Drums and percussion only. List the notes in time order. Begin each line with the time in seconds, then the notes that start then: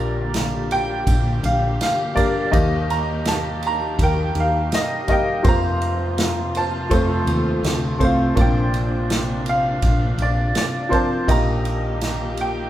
0.34 snare, ride
0.71 ride
1.07 kick, ride
1.44 ride
1.81 snare, ride
2.17 kick, ride
2.53 kick, ride
2.90 ride
3.25 snare, ride
3.63 ride
3.99 kick, ride
4.35 ride
4.72 snare, ride
5.08 kick, ride
5.44 kick, ride
5.82 ride
6.18 snare, ride
6.55 ride
6.91 kick, ride
7.27 ride
7.64 snare, ride
8.00 kick, ride
8.37 kick, ride
8.74 ride
9.10 snare, ride
9.46 ride
9.82 kick, ride
10.18 ride
10.55 snare, ride
10.92 kick, ride
11.28 kick, ride
11.65 ride
12.01 snare, ride
12.37 ride